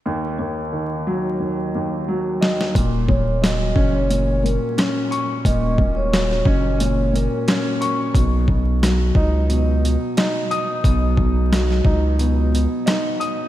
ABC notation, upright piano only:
X:1
M:4/4
L:1/8
Q:"Swing 16ths" 1/4=89
K:Ebm
V:1 name="Upright piano" clef=bass
E,, E,, E, G, E,, E,, G, e | B,, B,, G, D B,, B,, D d' | B,, B,, G, D B,, B,, D d' | =B,, B,, ^F, ^D B,, B,, D ^d' |
=B,, B,, ^F, ^D B,, B,, D ^d' |]